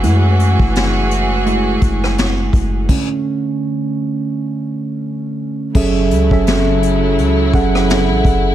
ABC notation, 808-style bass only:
X:1
M:4/4
L:1/16
Q:"Swing 16ths" 1/4=84
K:F#m
V:1 name="808-style bass" clef=bass
F,,3 F,,,6- F,,, F,,,4 F,,,2 | z16 | F,,,2 C,, F,,,4- F,,, C,,2 F,,,3 A,,, F,,,2 |]